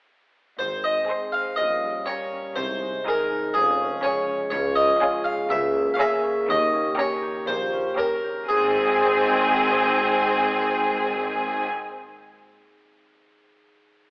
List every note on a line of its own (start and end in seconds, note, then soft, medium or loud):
0.59 0.99 G#1 medium
0.59 1.00 G#1 medium
0.59 1.61 G#2 soft
0.59 1.00 G#2 medium
0.59 1.56 G#3 soft
0.59 1.56 C4 soft
0.59 0.83 C5 medium
0.84 1.61 G#3 soft
0.84 1.31 D#5 medium
1.09 1.47 C4 soft
1.09 1.46 G#4 soft
1.09 1.61 C5 soft
1.09 1.47 C6 soft
1.32 1.61 C4 soft
1.32 1.57 F5 medium
1.56 1.98 A#1 medium
1.56 1.98 A#1 soft
1.56 1.98 A#2 medium
1.56 2.59 A#2 soft
1.56 2.03 D#5 medium
1.60 2.58 G3 soft
1.60 2.58 C#4 soft
1.83 2.59 G3 soft
2.06 2.45 C#4 soft
2.06 2.45 G4 soft
2.06 2.60 A#4 soft
2.06 2.53 C#5 medium
2.06 2.46 A#5 soft
2.32 2.59 C#4 soft
2.56 2.97 C2 medium
2.56 2.97 C3 medium
2.56 3.58 C3 soft
2.56 5.52 G#3 medium
2.56 3.54 D#4 soft
2.56 3.03 C5 medium
2.82 6.51 G#3 soft
3.06 3.43 D#4 medium
3.06 4.03 G#4 soft
3.06 3.44 G#4 medium
3.06 3.53 A#4 medium
3.06 3.43 G#5 medium
3.32 3.58 D#4 soft
3.54 3.94 F1 medium
3.54 3.95 F1 medium
3.54 3.94 F2 medium
3.54 5.53 F3 medium
3.54 4.54 C#4 medium
3.54 4.00 G#4 medium
3.81 4.27 C#4 soft
4.03 4.40 C#4 medium
4.03 4.41 G#4 medium
4.03 5.00 G#4 soft
4.03 4.49 C#5 medium
4.03 4.41 G#5 medium
4.29 4.75 C#4 soft
4.50 4.92 C#2 medium
4.50 5.49 C#3 medium
4.50 5.51 F4 medium
4.50 4.75 C#5 medium
4.76 6.22 C#4 soft
4.76 5.22 D#5 medium
5.01 5.38 C#4 medium
5.01 5.38 F4 medium
5.01 5.97 G#4 medium
5.01 5.38 G#5 medium
5.24 5.53 F4 medium
5.24 5.48 F5 medium
5.50 5.89 C#2 medium
5.50 5.90 C#2 medium
5.50 6.50 C#3 medium
5.50 8.19 A#3 medium
5.50 6.47 G#4 medium
5.50 5.90 E5 medium
5.75 7.46 A#3 medium
5.94 6.50 G#4 medium
5.94 6.01 F5 medium
5.99 6.36 C#4 medium
5.99 6.36 G#4 medium
5.99 6.46 E5 medium
5.99 6.37 A#5 medium
6.23 6.72 C#4 medium
6.48 6.87 D#2 medium
6.48 6.88 D#2 medium
6.48 8.50 D#3 medium
6.48 8.24 G4 medium
6.48 6.95 D#5 medium
6.73 7.71 C#4 soft
6.97 7.35 C#4 medium
6.97 7.35 G4 medium
6.97 7.97 A#4 medium
6.97 7.45 C#5 medium
6.97 7.36 A#5 medium
7.22 8.23 G4 soft
7.47 7.88 A#1 medium
7.47 7.87 A#2 medium
7.47 8.50 A#3 soft
7.47 7.94 C5 medium
7.72 8.50 C#4 soft
7.97 8.35 C#4 medium
7.97 8.36 G4 medium
7.97 8.51 A#4 soft
7.97 8.46 A#4 medium
7.97 8.36 A#5 medium
8.24 8.51 G4 soft
8.48 11.67 G#1 medium
8.48 11.68 G#2 medium
8.48 12.39 G#2 medium
8.48 11.67 C4 medium
8.48 11.69 C4 medium
8.48 11.67 G#4 medium
8.48 11.68 G#4 medium
8.48 11.69 G#5 medium
8.56 12.01 G#3 soft
8.63 11.82 C4 medium
8.70 11.89 D#4 medium
8.77 11.96 G#4 soft
8.84 12.03 D#5 medium